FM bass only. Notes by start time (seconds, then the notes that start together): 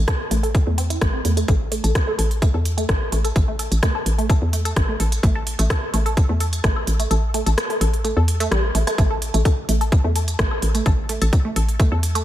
0.31 A1
0.67 E2
1.01 A1
1.25 E2
1.48 A1
1.84 A1
2.19 A1
2.54 E2
2.89 A1
3.12 A1
3.36 A1
3.71 A1
4.06 A1
4.42 E2
4.76 A1
5.00 A1
5.23 A1
5.59 A1
5.94 A1
6.29 E2
6.64 A1
6.87 A1
7.11 A1
7.46 A1
7.81 A1
8.17 E2
8.51 A1
8.75 A1
8.98 A1
9.34 A1
9.69 A1
10.04 E2
10.39 A1
10.62 A1
10.86 A1
11.22 A1
11.56 A1
11.92 E2